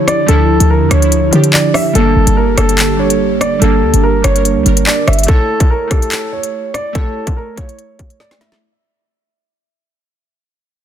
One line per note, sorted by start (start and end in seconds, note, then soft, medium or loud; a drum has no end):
0.00 5.24 D3 medium
0.00 0.26 F3 loud
0.00 1.92 F3 medium
0.00 0.29 D4 medium
0.00 0.31 E4 loud
0.00 1.91 E4 medium
0.00 1.35 G4 medium
0.08 0.25 D5 medium
0.08 cross-stick loud
0.08 closed hi-hat medium
0.26 0.59 D2 loud
0.26 0.83 F3 loud
0.26 0.84 D4 medium
0.26 0.68 A4 loud
0.26 closed hi-hat medium
0.31 0.85 E4 loud
0.60 0.83 D2 loud
0.60 closed hi-hat medium
0.70 0.88 A#4 medium
0.81 0.90 F2 loud
0.89 1.31 D2 loud
0.89 0.99 F3 medium
0.89 1.01 D4 medium
0.89 1.50 C#5 medium
0.89 cross-stick medium
0.89 closed hi-hat medium
0.94 1.02 E4 medium
1.00 1.28 F3 medium
1.00 1.29 D4 medium
1.00 closed hi-hat medium
1.05 1.30 E4 medium
1.12 closed hi-hat medium
1.31 1.73 D3 loud
1.31 1.87 F3 medium
1.31 1.88 D4 medium
1.31 closed hi-hat medium
1.35 1.89 G4 loud
1.44 closed hi-hat medium
1.53 1.71 D5 medium
1.53 clap loud
1.74 1.92 E5 medium
1.74 cross-stick medium
1.74 open hi-hat medium
1.93 2.15 G1 loud
1.93 2.50 G3 loud
1.93 5.25 A#3 medium
1.93 2.51 D4 loud
1.93 5.25 G4 medium
1.93 2.34 A4 loud
1.93 closed hi-hat medium
1.98 2.52 A#3 loud
2.16 2.27 G1 loud
2.27 2.56 G1 loud
2.27 closed hi-hat medium
2.37 2.54 A#4 medium
2.56 3.58 G1 loud
2.56 2.94 G3 medium
2.56 2.95 D4 medium
2.56 2.97 A4 loud
2.56 cross-stick loud
2.56 closed hi-hat loud
2.60 2.96 A#3 medium
2.69 closed hi-hat medium
2.79 clap loud
2.79 closed hi-hat medium
2.97 3.53 G3 medium
2.97 3.55 D4 medium
2.97 3.38 C#5 medium
3.01 3.56 A4 medium
3.10 closed hi-hat medium
3.41 3.59 D5 medium
3.41 cross-stick loud
3.41 closed hi-hat medium
3.59 3.84 G1 loud
3.59 4.16 G3 loud
3.59 4.17 D4 medium
3.59 4.01 A4 medium
3.59 closed hi-hat medium
3.64 4.18 A#3 loud
3.83 3.93 D2 loud
3.94 4.23 G1 loud
3.94 closed hi-hat medium
4.03 4.21 A#4 medium
4.22 4.58 G1 loud
4.22 4.32 G3 medium
4.22 4.34 D4 medium
4.22 4.83 C#5 medium
4.22 cross-stick loud
4.22 closed hi-hat loud
4.27 4.35 A#4 medium
4.33 4.61 G3 medium
4.33 4.63 D4 medium
4.33 closed hi-hat medium
4.38 4.64 A#4 medium
4.45 closed hi-hat medium
4.56 4.65 D2 loud
4.63 4.86 G1 loud
4.63 5.20 G3 medium
4.63 5.21 D4 medium
4.63 closed hi-hat medium
4.68 5.22 A#4 loud
4.77 closed hi-hat medium
4.87 5.04 D5 medium
4.87 clap loud
5.08 5.28 G1 loud
5.08 5.25 E5 medium
5.08 cross-stick loud
5.08 closed hi-hat medium
5.13 closed hi-hat medium
5.19 closed hi-hat medium
5.23 5.83 A3 medium
5.23 closed hi-hat medium
5.28 5.84 E4 medium
5.28 5.68 A4 loud
5.28 5.85 C#5 loud
5.28 kick loud
5.28 closed hi-hat medium
5.60 kick medium
5.60 closed hi-hat medium
5.70 5.88 A#4 medium
5.88 6.63 A3 medium
5.88 6.64 E4 medium
5.88 6.30 A4 medium
5.88 kick medium
5.88 cross-stick medium
5.88 closed hi-hat medium
5.92 6.65 G4 medium
6.02 closed hi-hat medium
6.12 clap loud
6.12 closed hi-hat medium
6.33 6.72 C#5 medium
6.43 closed hi-hat medium
6.74 6.92 D5 medium
6.74 cross-stick medium
6.74 closed hi-hat medium
6.93 7.49 A3 loud
6.93 7.51 E4 medium
6.93 7.34 A4 loud
6.93 kick loud
6.93 closed hi-hat medium
6.97 7.52 C#5 loud
7.27 kick medium
7.27 closed hi-hat medium
7.37 7.54 A#4 medium
7.56 8.31 A3 medium
7.56 8.32 E4 medium
7.56 8.16 C#5 medium
7.56 kick medium
7.56 closed hi-hat medium
7.60 8.33 C#5 medium
7.69 closed hi-hat medium
7.79 closed hi-hat medium
7.99 kick medium
7.99 closed hi-hat medium
8.10 closed hi-hat medium
8.20 8.38 D5 medium
8.20 snare medium
8.31 snare medium
8.38 8.58 A3 medium
8.38 8.59 E4 medium
8.38 8.58 E5 medium
8.38 snare medium
8.38 closed hi-hat medium
8.43 8.60 C#5 medium
8.52 snare medium